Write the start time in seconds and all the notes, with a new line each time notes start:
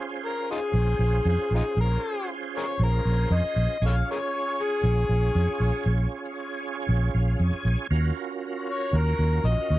Already playing: C#4 F4 G#4 C5
0.26 A#4
0.51 D#4 F4 G#4
0.74 A#1
0.99 A#1
1.25 F2 G#4
1.38 muted fingered electric bass stroke
1.51 A#1
1.55 D#4 F4 G#4
1.77 A#1
1.81 A#4
2.57 G#4 A#4 C#5
2.80 A#1 A#4
3.05 A#1
3.31 F2
3.35 D#5
3.44 muted fingered electric bass stroke
3.56 A#1
3.82 A#1 C#4 F4 G#4 C#5
3.86 A4 C#5 F5
4.11 G#4 A#4 C#5
4.62 G#4
4.84 A#1
5.09 A#1
5.35 F2
5.48 muted fingered electric bass stroke
5.60 A#1
5.86 A#1
6.89 A#1
7.14 A#1 F5
7.39 F2 G#5
7.53 muted fingered electric bass stroke
7.65 A#1
7.90 D#2 C#4 F4 F#4 A#4
8.71 C#5
8.93 D#2 A#4
9.19 D#2
9.44 A#1 D#5
9.70 D#2